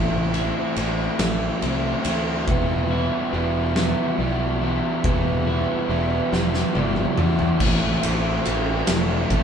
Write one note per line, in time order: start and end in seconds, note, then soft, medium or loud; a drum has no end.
0.00 0.51 A1 loud
0.00 0.32 A2 medium
0.00 0.34 E3 medium
0.00 1.20 E3 medium
0.00 0.33 A3 medium
0.00 0.34 C4 loud
0.00 0.77 C4 medium
0.00 0.34 E4 medium
0.00 0.35 E4 loud
0.00 0.75 A4 medium
0.34 0.76 A2 medium
0.34 0.78 E3 medium
0.34 0.77 A3 medium
0.34 0.78 C4 medium
0.34 0.79 E4 loud
0.34 ride medium
0.76 1.07 A1 medium
0.76 1.18 A2 medium
0.76 1.20 E3 medium
0.76 1.19 A3 medium
0.76 1.20 C4 medium
0.76 1.21 E4 loud
0.76 1.63 A4 medium
0.76 ride medium
1.19 1.50 A1 medium
1.19 1.61 A2 medium
1.19 1.63 E3 medium
1.19 1.62 A3 medium
1.19 1.63 C4 medium
1.19 1.64 E4 loud
1.19 snare loud
1.19 ride loud
1.62 1.93 C2 medium
1.62 2.04 A2 medium
1.62 2.05 E3 medium
1.62 2.05 A3 medium
1.62 2.05 C4 medium
1.62 2.07 E4 medium
1.62 2.48 C5 medium
1.62 ride medium
2.05 2.49 D2 medium
2.05 2.46 A2 medium
2.05 2.47 E3 medium
2.05 2.46 A3 medium
2.05 2.46 C4 medium
2.05 2.49 E4 medium
2.05 ride medium
2.48 3.08 E1 loud
2.48 4.62 E2 medium
2.48 2.90 E3 medium
2.48 2.91 G3 medium
2.48 2.91 B3 medium
2.48 2.92 E4 loud
2.48 3.32 B4 medium
2.48 kick loud
2.90 3.32 E3 medium
2.90 3.32 G3 medium
2.90 3.33 B3 medium
2.90 3.33 E4 loud
3.32 3.93 E1 loud
3.32 3.76 E3 medium
3.32 3.76 G3 medium
3.32 3.76 B3 medium
3.32 4.17 D4 medium
3.32 3.77 E4 loud
3.32 4.19 B4 medium
3.76 4.18 E3 medium
3.76 4.19 G3 medium
3.76 4.19 B3 loud
3.76 4.20 E4 loud
3.76 snare loud
4.18 4.79 B1 medium
4.18 4.61 E3 medium
4.18 4.62 G3 loud
4.18 4.62 B3 loud
4.18 5.88 D4 medium
4.18 4.63 E4 loud
4.18 5.05 D5 medium
4.62 5.03 E3 medium
4.62 5.03 G3 medium
4.62 5.04 B3 medium
4.62 5.04 E4 medium
5.04 5.64 E1 loud
5.04 7.17 E2 medium
5.04 5.46 E3 medium
5.04 5.46 G3 loud
5.04 5.47 B3 loud
5.04 5.47 E4 medium
5.04 5.88 B4 loud
5.04 kick loud
5.47 5.88 E3 medium
5.47 5.88 G3 medium
5.47 5.89 B3 loud
5.47 5.89 E4 medium
5.89 6.19 E1 loud
5.89 6.32 E3 medium
5.89 6.32 G3 medium
5.89 6.32 B3 medium
5.89 6.73 D4 medium
5.89 6.33 E4 loud
6.33 6.63 E1 loud
6.33 6.74 E3 medium
6.33 6.74 G3 loud
6.33 6.74 B3 medium
6.33 6.75 E4 medium
6.33 snare medium
6.54 snare medium
6.74 7.05 G1 loud
6.74 7.17 E3 loud
6.74 7.18 G3 loud
6.74 7.18 B3 loud
6.74 7.60 D4 medium
6.74 7.19 E4 loud
6.74 7.61 D5 medium
6.74 high tom medium
6.96 mid tom medium
7.17 7.48 E2 loud
7.17 7.58 E3 medium
7.17 7.59 G3 medium
7.17 7.59 B3 medium
7.17 7.59 E4 medium
7.17 mid tom loud
7.39 floor tom loud
7.60 7.96 A1 loud
7.60 8.03 A2 medium
7.60 8.04 E3 loud
7.60 8.04 A3 loud
7.60 8.05 C4 loud
7.60 8.05 E4 loud
7.60 kick loud
7.60 crash loud
8.03 8.39 A1 medium
8.03 8.45 A2 medium
8.03 8.46 E3 loud
8.03 8.46 A3 loud
8.03 8.47 C4 medium
8.03 8.47 E4 medium
8.03 ride medium
8.45 8.82 A1 loud
8.45 8.87 A2 medium
8.45 8.88 E3 medium
8.45 8.88 A3 loud
8.45 8.88 C4 loud
8.45 8.90 E4 medium
8.45 ride medium
8.87 9.24 E1 loud
8.87 9.29 A2 loud
8.87 9.31 E3 medium
8.87 9.30 A3 medium
8.87 9.30 C4 loud
8.87 9.32 E4 loud
8.87 snare loud
8.87 ride loud
9.30 9.43 A1 medium
9.30 9.43 A2 medium
9.30 9.43 E3 medium
9.30 9.43 A3 loud
9.30 9.43 C4 medium
9.30 9.43 E4 loud
9.30 kick medium
9.30 ride medium